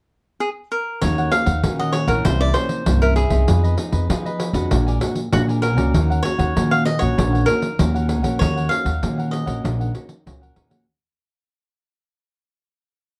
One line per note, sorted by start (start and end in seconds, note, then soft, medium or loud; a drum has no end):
0.40 0.49 G#4 medium
0.72 1.00 A#4 medium
1.01 1.28 D#2 loud
1.01 1.60 D#3 medium
1.01 1.28 A#3 medium
1.01 1.28 C#4 medium
1.01 1.16 D#4 soft
1.01 1.28 F#4 medium
1.01 1.16 A#4 medium
1.01 1.30 C#5 medium
1.01 1.16 C#5 medium
1.01 1.16 F#5 medium
1.01 pandeiro medium
1.18 1.31 A#4 medium
1.18 1.31 C#5 medium
1.18 1.31 F#5 medium
1.18 pandeiro soft
1.31 1.50 A#3 medium
1.31 1.50 C#4 soft
1.31 1.50 F#4 medium
1.31 1.79 F5 medium
1.31 pandeiro medium
1.45 1.60 D#2 medium
1.45 1.62 A#4 soft
1.45 1.61 C#5 medium
1.45 1.61 F#5 medium
1.45 pandeiro medium
1.63 2.22 A#2 medium
1.63 2.03 D#3 medium
1.63 2.05 A#3 medium
1.63 2.05 C#4 medium
1.63 1.77 D#4 soft
1.63 2.05 F#4 medium
1.63 1.78 A#4 soft
1.63 1.78 C#5 soft
1.63 1.78 F#5 soft
1.63 pandeiro medium
1.79 2.07 A#4 medium
1.79 2.07 C#5 medium
1.79 1.93 D#5 medium
1.79 2.06 F#5 medium
1.79 pandeiro soft
1.92 2.09 C#5 medium
1.92 pandeiro medium
2.07 2.21 A#1 medium
2.07 2.50 E3 medium
2.07 2.50 A#3 medium
2.07 2.50 C#4 medium
2.07 2.23 A#4 medium
2.07 2.23 A#4 soft
2.07 2.23 C#5 medium
2.07 2.22 F#5 medium
2.07 pandeiro medium
2.24 2.51 C2 medium
2.24 2.84 C3 medium
2.24 2.39 E4 soft
2.24 2.39 A#4 soft
2.24 2.41 C5 medium
2.24 2.39 C5 medium
2.24 2.39 E5 medium
2.24 pandeiro medium
2.40 2.53 A#4 medium
2.40 2.54 C5 medium
2.40 2.55 D5 medium
2.40 2.54 E5 medium
2.40 pandeiro soft
2.54 2.81 E3 medium
2.54 2.81 A#3 medium
2.54 2.82 C#4 medium
2.54 3.02 C5 medium
2.54 muted cavaquinho stroke soft
2.54 pandeiro medium
2.69 pandeiro soft
2.86 3.26 C2 medium
2.86 3.45 G2 medium
2.86 3.16 E3 medium
2.86 3.16 A#3 medium
2.86 3.16 C#4 medium
2.86 pandeiro medium
3.02 3.15 A#4 medium
3.02 3.16 C5 medium
3.02 3.16 E5 medium
3.02 pandeiro soft
3.16 3.31 E4 medium
3.16 3.74 G#4 medium
3.16 3.30 A#4 soft
3.16 3.29 C5 medium
3.16 3.28 E5 medium
3.16 pandeiro medium
3.30 3.44 C2 medium
3.30 3.73 B3 medium
3.30 3.73 D#4 medium
3.30 3.74 G#4 medium
3.30 3.46 A#4 soft
3.30 3.46 C5 medium
3.30 3.45 E5 medium
3.30 pandeiro medium
3.47 3.74 F2 loud
3.47 4.07 F3 medium
3.47 3.62 F4 soft
3.47 3.62 G#4 soft
3.47 3.62 B4 medium
3.47 3.62 D#5 medium
3.47 pandeiro medium
3.63 3.77 G#4 medium
3.63 3.77 B4 medium
3.63 3.78 D#5 medium
3.63 pandeiro soft
3.78 4.04 B3 soft
3.78 4.04 D#4 medium
3.78 4.05 G#4 medium
3.78 muted cavaquinho stroke soft
3.78 pandeiro medium
3.92 4.06 F2 medium
3.92 4.08 G#4 medium
3.92 4.08 B4 medium
3.92 4.07 D#5 medium
3.92 pandeiro medium
4.10 4.49 F3 medium
4.10 4.68 F3 medium
4.10 4.51 B3 medium
4.10 4.51 D#4 medium
4.10 4.24 F4 soft
4.10 4.24 G#4 soft
4.10 4.52 G#4 medium
4.10 4.25 B4 soft
4.10 4.24 D#5 medium
4.10 pandeiro medium
4.26 4.54 G#4 medium
4.26 4.53 B4 medium
4.26 4.52 D#5 medium
4.26 pandeiro soft
4.40 pandeiro medium
4.53 4.67 F2 medium
4.53 4.96 G#3 medium
4.53 4.96 D4 medium
4.53 4.96 F#4 medium
4.53 4.70 G#4 medium
4.53 4.69 B4 medium
4.53 4.69 D#5 medium
4.53 pandeiro medium
4.71 4.97 A#1 medium
4.71 5.30 A#2 medium
4.71 4.85 F#4 soft
4.71 4.85 A#4 medium
4.71 4.86 D5 soft
4.71 4.85 G#5 soft
4.71 pandeiro medium
4.87 5.00 A#4 medium
4.87 5.00 D5 medium
4.87 5.00 G#5 medium
4.87 pandeiro soft
5.01 5.20 G#3 medium
5.01 5.20 D4 medium
5.01 5.20 F#4 medium
5.01 muted cavaquinho stroke soft
5.01 pandeiro medium
5.15 pandeiro soft
5.32 5.77 A#1 medium
5.32 5.91 A#2 medium
5.32 5.62 G#3 medium
5.32 5.62 D4 medium
5.32 5.41 F#4 medium
5.32 5.62 F#4 medium
5.32 pandeiro medium
5.48 5.61 A#4 medium
5.48 5.62 D5 medium
5.48 5.62 G#5 medium
5.48 pandeiro soft
5.62 5.77 F#4 medium
5.62 6.20 A#4 medium
5.62 5.77 A#4 medium
5.62 5.76 D5 medium
5.62 5.75 G#5 medium
5.62 pandeiro medium
5.76 5.91 C#2 medium
5.76 6.19 A#3 medium
5.76 6.19 C#4 medium
5.76 6.20 F#4 medium
5.76 5.93 A#4 medium
5.76 5.92 D5 medium
5.76 5.92 G#5 medium
5.76 pandeiro medium
5.94 6.21 D#2 loud
5.94 6.53 D#3 medium
5.94 6.08 D#4 soft
5.94 6.09 A#4 soft
5.94 6.09 C#5 medium
5.94 6.09 F#5 medium
5.94 pandeiro medium
6.10 6.23 A#4 medium
6.10 6.23 C#5 medium
6.10 6.24 F#5 medium
6.10 pandeiro soft
6.23 6.51 A#3 soft
6.23 6.51 C#4 medium
6.23 6.51 F#4 medium
6.23 6.72 C#5 medium
6.23 pandeiro medium
6.38 6.53 D#2 medium
6.38 6.54 A#4 medium
6.38 6.54 C#5 medium
6.38 6.53 F#5 medium
6.38 pandeiro medium
6.56 7.15 A#2 medium
6.56 6.95 D#3 medium
6.56 6.85 A#3 medium
6.56 6.85 C#4 medium
6.56 6.70 D#4 soft
6.56 6.86 F#4 medium
6.56 6.70 A#4 soft
6.56 6.71 C#5 soft
6.56 6.70 F#5 soft
6.56 pandeiro medium
6.71 7.00 A#4 medium
6.71 7.00 C#5 medium
6.71 6.85 F5 medium
6.71 6.98 F#5 medium
6.71 pandeiro soft
6.85 7.02 D#5 medium
6.85 pandeiro medium
6.99 7.14 A#1 medium
6.99 7.43 A#3 medium
6.99 7.43 C#4 medium
6.99 7.43 F#4 medium
6.99 7.16 A#4 medium
6.99 7.48 C#5 medium
6.99 7.16 C#5 medium
6.99 7.15 F#5 medium
6.99 pandeiro medium
7.17 7.44 A#1 medium
7.17 7.76 D#3 medium
7.17 7.31 D#4 soft
7.17 7.31 A#4 soft
7.17 7.32 C#5 medium
7.17 7.31 F#5 medium
7.17 pandeiro medium
7.32 7.45 A#4 medium
7.32 7.45 C#5 medium
7.32 7.46 F#5 medium
7.32 pandeiro soft
7.46 7.66 A#3 medium
7.46 7.66 C#4 medium
7.46 7.67 F#4 medium
7.46 8.36 A#4 medium
7.46 muted cavaquinho stroke soft
7.46 pandeiro medium
7.62 pandeiro soft
7.79 8.24 D#2 medium
7.79 8.38 A#2 medium
7.79 8.21 A#3 medium
7.79 8.21 C#4 medium
7.79 8.21 F#4 medium
7.79 pandeiro medium
7.94 8.08 A#4 medium
7.94 8.08 C#5 medium
7.94 8.08 F#5 medium
7.94 pandeiro soft
8.08 8.23 D#4 soft
8.08 8.23 A#4 soft
8.08 8.22 C#5 soft
8.08 8.21 F#5 medium
8.08 pandeiro medium
8.23 8.38 A#1 medium
8.23 8.66 A#3 medium
8.23 8.66 C#4 medium
8.23 8.66 F#4 medium
8.23 8.39 A#4 medium
8.23 8.39 C#5 medium
8.23 8.38 F#5 medium
8.23 pandeiro medium
8.39 8.67 D#2 loud
8.39 9.00 D#3 medium
8.39 8.55 D#4 soft
8.39 8.55 A#4 soft
8.39 8.72 C#5 medium
8.39 8.55 C#5 soft
8.39 8.55 F#5 medium
8.39 pandeiro medium
8.56 8.70 A#4 medium
8.56 8.70 C#5 medium
8.56 8.70 F#5 medium
8.56 pandeiro soft
8.69 8.89 A#3 soft
8.69 8.89 C#4 medium
8.69 8.90 F#4 medium
8.69 9.31 F5 medium
8.69 muted cavaquinho stroke soft
8.69 pandeiro medium
8.85 8.99 D#2 medium
8.85 9.01 A#4 medium
8.85 9.01 C#5 medium
8.85 9.00 F#5 medium
8.85 pandeiro medium
9.02 9.61 A#2 medium
9.02 9.42 D#3 medium
9.02 9.44 A#3 medium
9.02 9.44 C#4 medium
9.02 9.17 D#4 soft
9.02 9.44 F#4 medium
9.02 9.17 A#4 soft
9.02 9.17 C#5 soft
9.02 9.17 F#5 soft
9.02 pandeiro medium
9.18 9.46 A#4 medium
9.18 9.46 C#5 medium
9.18 9.45 F#5 medium
9.18 pandeiro soft
9.31 10.52 D#5 medium
9.31 pandeiro medium
9.46 9.61 A#1 medium
9.46 9.89 A#3 medium
9.46 9.89 C#4 medium
9.46 9.90 F#4 medium
9.46 9.62 A#4 medium
9.46 9.62 C#5 medium
9.46 9.62 F#5 medium
9.46 pandeiro medium
9.63 9.91 A#1 loud
9.63 10.23 D#3 medium
9.63 9.78 D#4 soft
9.63 9.78 A#4 soft
9.63 9.78 C#5 medium
9.63 9.79 F#5 medium
9.63 pandeiro medium
9.80 9.93 A#4 soft
9.80 9.93 C#5 medium
9.80 9.94 F#5 medium
9.80 pandeiro soft
9.94 10.13 A#3 medium
9.94 10.13 C#4 medium
9.94 10.13 F#4 medium
9.94 muted cavaquinho stroke soft
9.94 pandeiro medium
10.09 pandeiro medium
10.26 10.54 C#2 medium
10.26 10.85 A#2 medium
10.26 10.67 A#3 medium
10.26 10.68 C#4 medium
10.26 10.68 F#4 medium
10.26 pandeiro medium
10.41 10.55 A#4 medium
10.41 10.56 C#5 medium
10.41 10.56 F#5 medium
10.41 pandeiro soft
10.56 10.84 D#2 medium
10.56 10.71 D#4 soft
10.56 10.70 A#4 medium
10.56 10.69 C#5 soft
10.56 10.69 F#5 medium
10.56 pandeiro medium
10.70 10.84 A#3 medium
10.70 10.85 C#4 medium
10.70 10.85 F#4 medium
10.70 10.86 A#4 soft
10.70 10.86 C#5 medium
10.70 10.85 F#5 medium
10.70 pandeiro medium